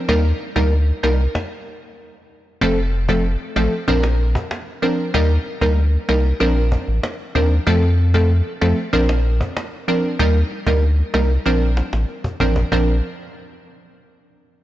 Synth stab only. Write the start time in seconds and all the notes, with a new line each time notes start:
0.08 G3 A#3 D#4 A#4
0.56 G3 A#3 D#4 A#4
1.03 G3 A#3 D#4 A#4
2.61 F3 A3 C4 A4
3.09 F3 A3 C4 A4
3.56 F3 A3 C4 A4
3.88 F3 C4 D4 A#4
4.82 F3 C4 D4 A#4
5.14 G3 A#3 D#4 A#4
5.61 G3 A#3 D#4 A#4
6.09 G3 A#3 D#4 A#4
6.40 F3 C4 D4 A#4
7.35 F3 C4 D4 A#4
7.67 F3 A3 C4 A4
8.14 F3 A3 C4 A4
8.61 F3 A3 C4 A4
8.93 F3 C4 D4 A#4
9.88 F3 C4 D4 A#4
10.19 G3 A#3 D#4 A#4
10.67 G3 A#3 D#4 A#4
11.14 G3 A#3 D#4 A#4
11.46 F3 C4 D4 A#4
12.41 F3 C4 D4 A#4
12.72 F3 C4 D4 A#4